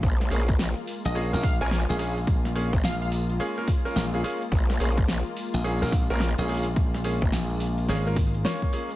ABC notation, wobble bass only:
X:1
M:4/4
L:1/16
Q:"Swing 16ths" 1/4=107
K:Bbm
V:1 name="Wobble bass" clef=bass
B,,,2 B,,,3 z6 B,,,2 z3 | z3 B,,, z12 | B,,,2 B,,,3 z6 B,,,2 z3 | z3 B,,, z12 |]